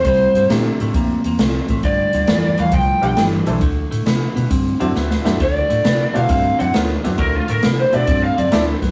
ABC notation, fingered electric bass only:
X:1
M:4/4
L:1/8
Q:"Swing" 1/4=134
K:Ddor
V:1 name="Fingered electric bass" clef=bass
C,, G,, _B,, A,, F,, E,, C,, A,,, | G,,, D,, F,, E,, C,, B,,, G,,, B,,, | D,, A,, C, B,, G,, ^F,, D,, F,, | D,, A,, C, B,, G,, ^F,, D,, F,, |
D,, A,, C, B,, G,, ^F,, D,, F,, |]